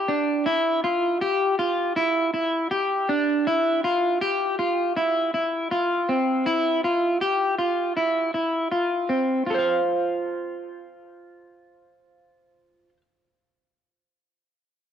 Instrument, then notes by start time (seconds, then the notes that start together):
clean electric guitar
0.08 D4
0.46 E4
0.84 F4
1.21 G4
1.59 F4
1.96 E4
2.33 E4
2.71 G4
3.09 D4
3.47 E4
3.84 F4
4.21 G4
4.59 F4
4.97 E4
5.34 E4
5.71 F4
6.09 C4
6.46 E4
6.84 F4
7.21 G4
7.58 F4
7.96 E4
8.34 E4
8.71 F4
9.09 C4
9.46 F4 A4
9.54 C5
9.59 F5